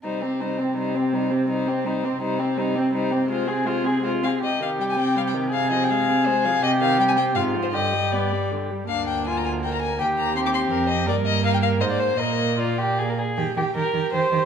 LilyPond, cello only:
\new Staff \with { instrumentName = "Cello" } { \clef bass \time 3/4 \key c \minor \tempo 4 = 164 c2.~ | c2. | c2.~ | c2~ c8 r8 |
c2.~ | c2. | c2 aes,4 | g,2~ g,8 r8 |
\key ees \major d,2. | ees,2 f,4 | g,2 aes,4 | bes,2~ bes,8 r8 |
ees8 ees8 ees8 ees8 ees8 ees8 | }